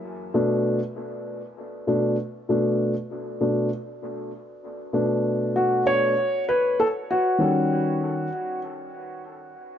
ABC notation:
X:1
M:4/4
L:1/8
Q:"Swing 16ths" 1/4=98
K:Bm
V:1 name="Upright piano"
z8 | z8 | z2 F c2 B A F- | F4 z4 |]
V:2 name="Upright piano"
z [B,,A,D] z4 [B,,A,D] z | [B,,A,D] z2 [B,,A,D] z4 | [B,,A,D]3 [B,,A,D] z4 | [^D,G,C]3 z4 z |]